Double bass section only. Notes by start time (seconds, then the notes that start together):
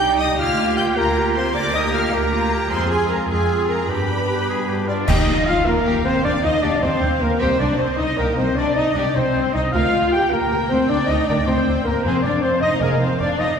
Already playing: C2
0.39 D2
0.96 D2
1.56 D2
2.14 D2
2.72 F2
3.30 F2
3.89 G2
4.48 G2
5.08 D#2
5.28 D#2
5.66 D#2
5.85 D#2
6.05 D#2
6.25 D#2
6.45 D#2
6.64 D#2
6.84 D#2
7.02 D#2
7.22 D#2
7.41 C2
7.60 C2
7.99 C2
8.19 C2
8.38 C2
8.58 C2
8.76 C2
8.95 C2
9.17 C2
9.35 C2
9.54 C2
9.74 D2
9.93 D2
10.32 D2
10.50 D2
10.71 D2
10.90 D2
11.10 D2
11.30 D2
11.48 D2
11.67 D2
11.86 D2
12.04 F1
12.24 F1
12.61 F1
12.81 F1
13.02 F1
13.21 F1
13.39 F1